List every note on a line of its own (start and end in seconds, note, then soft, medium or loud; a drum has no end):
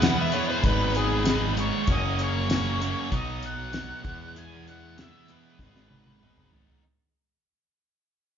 0.00 0.15 E2 medium
0.00 0.32 E2 medium
0.00 0.33 B2 medium
0.00 0.33 E3 medium
0.00 0.32 G#3 medium
0.00 0.34 B3 medium
0.00 0.34 E4 medium
0.00 1.54 B4 medium
0.00 snare loud
0.00 closed hi-hat medium
0.00 tambourine medium
0.04 0.35 G#4 medium
0.04 0.18 F#5 medium
0.21 0.34 E5 medium
0.32 0.62 E2 medium
0.32 0.62 B2 medium
0.32 0.62 E3 medium
0.32 0.62 G#3 medium
0.32 0.63 B3 medium
0.32 0.63 E4 medium
0.32 0.48 C#5 medium
0.32 closed hi-hat medium
0.36 0.63 G#4 medium
0.50 0.64 C5 medium
0.63 1.69 G#1 medium
0.63 1.24 G#2 medium
0.63 1.24 D#3 medium
0.63 1.25 G#3 medium
0.63 1.25 B3 medium
0.63 1.26 D#4 loud
0.63 1.27 G#4 medium
0.63 0.95 B4 medium
0.63 kick medium
0.63 closed hi-hat medium
0.95 1.40 G#4 medium
0.95 closed hi-hat medium
1.25 1.54 G#2 medium
1.25 1.55 D#3 medium
1.25 1.55 G#3 medium
1.25 1.56 B3 medium
1.25 1.56 D#4 medium
1.25 1.57 G#4 medium
1.25 snare medium
1.25 closed hi-hat medium
1.25 tambourine loud
1.55 1.85 G#2 medium
1.55 1.85 D#3 medium
1.55 1.85 G#3 medium
1.55 1.86 B3 medium
1.55 1.86 D#4 medium
1.55 1.86 G#4 medium
1.55 closed hi-hat medium
1.60 1.82 C#5 medium
1.83 2.47 F#2 medium
1.83 1.89 C#5 medium
1.83 closed hi-hat medium
1.88 2.94 F#1 medium
1.88 2.47 C#3 medium
1.88 2.48 F#3 loud
1.88 2.49 A#3 medium
1.88 2.49 C#4 loud
1.88 2.50 F#4 loud
1.88 kick medium
1.92 2.21 D#5 medium
2.19 closed hi-hat medium
2.23 3.15 C#5 medium
2.48 2.79 F#2 medium
2.48 2.80 C#3 medium
2.48 2.81 F#3 medium
2.48 2.81 A#3 medium
2.48 2.81 C#4 medium
2.48 2.82 F#4 medium
2.48 snare loud
2.48 closed hi-hat medium
2.48 tambourine loud
2.80 3.09 F#2 medium
2.80 3.09 C#3 medium
2.80 3.10 F#3 medium
2.80 3.10 A#3 medium
2.80 3.10 C#4 medium
2.80 3.10 F#4 medium
2.80 closed hi-hat medium
3.12 3.91 B1 medium
3.12 3.72 B2 loud
3.12 3.72 F#3 medium
3.12 3.73 B3 medium
3.12 3.73 D#4 loud
3.12 3.73 F#4 medium
3.12 3.42 D#5 medium
3.12 kick medium
3.12 closed hi-hat medium
3.43 4.32 F#5 medium
3.43 closed hi-hat medium
3.73 4.02 B2 medium
3.73 4.02 F#3 medium
3.73 4.05 B3 medium
3.73 4.02 D#4 medium
3.73 4.03 F#4 medium
3.73 snare medium
3.73 closed hi-hat medium
3.73 tambourine medium
4.04 4.33 E2 medium
4.04 5.11 E2 medium
4.04 4.34 B2 medium
4.04 4.35 E3 medium
4.04 4.34 G#3 medium
4.04 4.36 B3 medium
4.04 4.36 E4 loud
4.04 4.37 G#4 medium
4.04 kick medium
4.04 closed hi-hat soft
4.35 4.96 E2 medium
4.35 4.96 B2 medium
4.35 4.97 E3 medium
4.35 4.96 G#3 medium
4.35 4.98 B3 loud
4.35 4.99 E4 loud
4.35 4.99 G#4 loud
4.35 4.68 G#5 medium
4.35 closed hi-hat medium
4.68 4.96 F#5 medium
4.68 closed hi-hat soft
4.97 5.26 E2 medium
4.97 5.26 B2 medium
4.97 5.27 E3 medium
4.97 5.28 G#3 medium
4.97 5.27 B3 medium
4.97 5.28 E4 medium
4.97 5.28 G#4 medium
4.97 5.30 E5 medium
4.97 snare medium
4.97 closed hi-hat medium
4.97 tambourine medium
5.27 5.56 E2 medium
5.27 5.56 B2 medium
5.27 5.57 E3 medium
5.27 5.57 G#3 medium
5.27 5.57 B3 medium
5.27 5.58 E4 medium
5.27 5.58 G#4 medium
5.27 6.49 B4 medium
5.27 closed hi-hat soft
5.59 6.66 G#1 medium
5.59 6.20 G#2 medium
5.59 6.20 D#3 medium
5.59 6.21 G#3 medium
5.59 6.21 B3 medium
5.59 6.22 D#4 medium
5.59 6.22 G#4 medium
5.59 kick medium
5.59 snare medium
5.76 snare soft
5.91 high tom medium
6.06 high tom medium
6.21 6.50 G#2 medium
6.21 6.50 D#3 medium
6.21 6.51 G#3 medium
6.21 6.52 B3 medium
6.21 6.53 D#4 medium
6.21 6.52 G#4 medium
6.21 mid tom medium
6.37 mid tom medium
6.51 6.81 G#2 medium
6.51 6.81 D#3 medium
6.51 6.81 G#3 medium
6.51 6.82 B3 medium
6.51 6.82 D#4 medium
6.51 6.82 G#4 medium
6.51 floor tom medium
6.70 floor tom medium